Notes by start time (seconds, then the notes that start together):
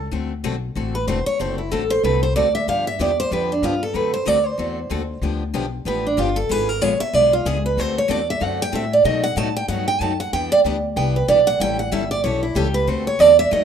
Already playing: A4
0.12 D2 D3 A3 C4 F#4 A4
0.44 B1 D3 A3 C4 F#4 A4
0.76 A1 D3 A3 C4 F#4 A4
0.95 B4
1.07 E1 D3 A3 C4 F#4 A4 C5
1.26 C#5, muted upright bass stroke
1.40 F#1 D3 A3 C4 F#4 A4 C5
1.58 E4
1.72 A1 D3 A3 C4 F#4 A4
1.90 C5
2.03 C2 D3 A3 C4 F#4 A4 B4
2.23 C5
2.35 D2 D3 A3 C4 F#4 A4 D5
2.55 E5
2.67 G2 D3 F3 B3 D4 G4 F5
2.87 E5
2.99 E2 D3 F3 B3 D4 G4 D5
3.20 C5
3.31 F2 D3 F3 B3 D4 G4 B4
3.52 D4
3.62 G2 D3 F3 B3 D4 F4 G4
3.83 A4
3.94 F#2 D3 A3 C4 F#4 A4 B4
4.14 C5
4.26 D2 D3 A3 C4 F#4 A4 D5
4.46 C5
4.58 E2 D3 A3 C4 F#4 A4
4.90 D#2 D3 A3 C4 F#4 A4
5.21 D2 D3 F3 B3 D4 G4
5.54 B1 D3 F3 B3 D4 G4
5.85 A1 D3 F3 B3 D4 G4 B4
6.07 D4
6.17 G1 D3 F3 B3 D4 F4 G4
6.36 A4
6.49 G#1 D3 G#3 B3 F4 G#4 B4
6.69 A#4
6.81 A#1 D3 G#3 B3 F4 G#4 C#5
7.00 E5, muted upright bass stroke
7.13 B1 D3 G#3 B3 F4 G#4 D5
7.33 F4
7.45 C#2 D3 G#3 B3 F4 G#4
7.66 B4
7.77 D2 D3 A3 C4 F#4 A4 C5
7.98 C#5
8.09 E2 D3 A3 C4 F#4 A4 D5
8.30 E5
8.41 F#2 D3 A3 C4 F#4 A4 F#5
8.62 G5
8.72 A2 D3 A3 C4 F#4 A4 E5
8.93 D5
9.05 B2 D#3 F#3 A3 B3 D#4 F#4 A4 D#5
9.24 F#5
9.36 A2 B2 D#3 F#3 A3 B3 D#4 F#4 A4 A5
9.56 G5
9.68 G2 B2 D#3 F#3 A3 B3 D#4 F#4 A4 F#5
9.88 G5
10.00 F#2 B2 D#3 F#3 A3 B3 D#4 F#4 A4 A5
10.20 F#5
10.33 E2 E3 G3 B3 D4 E4 G4 B4 G5
10.52 D5
10.64 D2 E3 G3 B3 D4 E4 G4 B4
10.96 C2 E3 G3 B3 D4 E4 G4 B4 G5
11.16 B4
11.28 B1 E3 G3 B3 D4 E4 G4 B4 D5
11.47 F#5
11.60 A1 E3 G3 C#4 E4 A4 G5
11.79 F#5
11.91 G1 E3 G3 C#4 E4 A4 E5
12.11 D5
12.23 B1 E3 G3 C#4 E4 A4 C#5
12.43 E4
12.55 C#2 E3 G3 C#4 E4 G4 A4
12.74 B4
12.87 D2 D3 A3 C4 F#4 A4 C5
13.07 C#5
13.19 E2 D3 A3 C4 F#4 A4 D5
13.39 E5
13.51 F#2 B2 D#3 F#3 A3 B3 D#4 F#4 A4 D#5